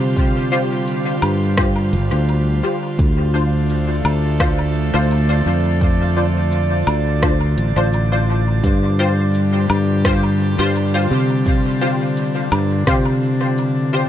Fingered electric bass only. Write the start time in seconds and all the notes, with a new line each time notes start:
Already playing: C3
1.23 G2
1.93 G1
2.11 D2
2.99 D2
4.05 D2
4.94 D2
5.46 F2
6.87 D2
7.58 A1
7.76 A1
8.64 G2
9.70 G2
10.59 G2
11.11 C3
12.52 G2
12.87 C3